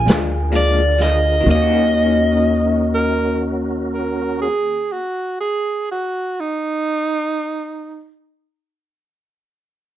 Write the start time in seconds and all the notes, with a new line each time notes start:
Already playing: D3 F4 G#4 A#4 G#5
0.05 D2 D4 G#4 D5 F5, closed hi-hat
0.09 F3 G#3, snare
0.50 A#2 F3 G#3 D4 G#4 D5 F5, closed hi-hat
0.56 D5
0.98 G#4 D5 F5, snare, closed hi-hat
1.02 D#5
1.41 D#3 F#4
1.46 D#2 A#3 C#4 F#4 A#4 C#5
1.51 D#5 F5
1.55 C#4
1.62 F#4
2.94 A#4
3.94 A#4
4.41 G#4
4.92 F#4
5.40 G#4
5.91 F#4
6.40 D#4